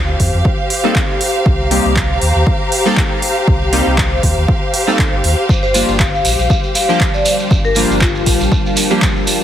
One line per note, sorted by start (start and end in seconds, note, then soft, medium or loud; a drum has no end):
0.00 0.16 D2 medium
0.00 9.44 G4 medium
0.00 9.44 C5 medium
0.00 9.44 F5 medium
0.00 0.45 A5 medium
0.20 0.30 F2 medium
0.20 kick medium
0.20 open hi-hat medium
0.34 0.42 F2 loud
0.45 kick loud
0.70 open hi-hat medium
0.84 0.96 G3 loud
0.84 0.96 A#3 medium
0.84 0.96 C4 medium
0.84 0.96 D#4 medium
0.84 0.96 A4 loud
0.95 kick loud
0.95 clap loud
1.12 5.49 A#5 medium
1.21 open hi-hat medium
1.46 1.80 C2 loud
1.46 kick loud
1.71 1.92 G3 medium
1.71 1.92 A#3 medium
1.71 1.92 C4 medium
1.71 1.93 D#4 medium
1.71 1.93 G4 medium
1.71 open hi-hat medium
1.85 2.17 C2 medium
1.96 kick loud
1.96 clap loud
2.21 2.32 D#2 medium
2.21 open hi-hat medium
2.35 2.44 D#2 loud
2.47 kick loud
2.72 open hi-hat loud
2.85 2.97 G3 medium
2.85 2.98 A#3 medium
2.85 2.98 C4 medium
2.85 2.98 D#4 medium
2.85 2.98 A4 loud
2.97 kick loud
2.97 clap loud
3.22 open hi-hat medium
3.48 3.81 C2 medium
3.48 kick loud
3.72 3.94 G3 medium
3.72 3.94 A#3 medium
3.72 3.94 C4 medium
3.72 3.94 D#4 medium
3.72 3.94 G4 medium
3.72 open hi-hat medium
3.86 4.19 C2 medium
3.98 kick loud
3.98 clap loud
4.23 4.34 D#2 medium
4.23 kick medium
4.23 open hi-hat medium
4.37 4.46 D#2 loud
4.48 kick loud
4.74 open hi-hat loud
4.87 4.99 G3 medium
4.87 4.99 A#3 medium
4.87 4.99 C4 medium
4.87 4.99 D#4 medium
4.87 5.00 A4 loud
4.99 kick loud
4.99 clap loud
5.13 5.21 G1 medium
5.24 5.35 D#2 medium
5.24 open hi-hat medium
5.49 5.83 G1 medium
5.49 9.44 G3 medium
5.49 9.44 D4 medium
5.49 9.44 F4 medium
5.49 9.44 A#4 medium
5.49 kick loud
5.49 shekere soft
5.63 5.78 C5 medium
5.63 shekere soft
5.74 5.96 F3 medium
5.74 5.96 G3 medium
5.74 5.96 A#3 medium
5.74 5.96 D4 medium
5.74 5.96 F4 medium
5.74 open hi-hat loud
5.74 shekere medium
5.88 6.21 G1 medium
5.88 shekere soft
5.99 6.50 F5 medium
5.99 kick loud
5.99 clap loud
5.99 shekere soft
6.14 shekere soft
6.25 6.35 A#1 medium
6.25 open hi-hat medium
6.25 shekere medium
6.39 6.47 A#1 loud
6.39 shekere soft
6.50 kick loud
6.50 shekere medium
6.63 shekere soft
6.75 6.84 F5 medium
6.75 open hi-hat loud
6.75 shekere medium
6.89 7.01 F3 loud
6.89 7.01 G3 medium
6.89 7.01 A#3 medium
6.89 7.01 D4 medium
6.89 7.01 G4 loud
6.89 6.96 F5 medium
6.89 shekere soft
6.99 9.44 A5 medium
6.99 kick loud
6.99 clap loud
6.99 shekere soft
7.14 7.30 D5 medium
7.14 shekere soft
7.25 open hi-hat medium
7.25 shekere medium
7.39 shekere soft
7.51 7.85 G1 loud
7.51 kick loud
7.51 shekere medium
7.64 7.80 A#4 medium
7.64 shekere soft
7.75 7.97 F3 medium
7.75 7.97 G3 medium
7.75 7.97 A#3 medium
7.75 7.98 D4 medium
7.75 7.98 F4 medium
7.75 open hi-hat loud
7.75 shekere loud
7.90 8.22 G1 medium
7.90 shekere soft
8.01 8.52 F4 medium
8.01 kick loud
8.01 clap loud
8.01 shekere medium
8.15 shekere soft
8.26 8.37 A#1 medium
8.26 kick medium
8.26 open hi-hat medium
8.26 shekere medium
8.40 8.49 A#1 loud
8.40 shekere soft
8.52 kick loud
8.52 shekere soft
8.66 shekere soft
8.77 open hi-hat loud
8.77 shekere medium
8.90 9.02 F3 medium
8.90 9.03 G3 medium
8.90 9.03 A#3 medium
8.90 9.03 D4 medium
8.90 9.03 G4 loud
8.90 shekere soft
9.02 kick loud
9.02 clap loud
9.02 shekere medium
9.16 shekere soft
9.27 open hi-hat medium
9.27 shekere medium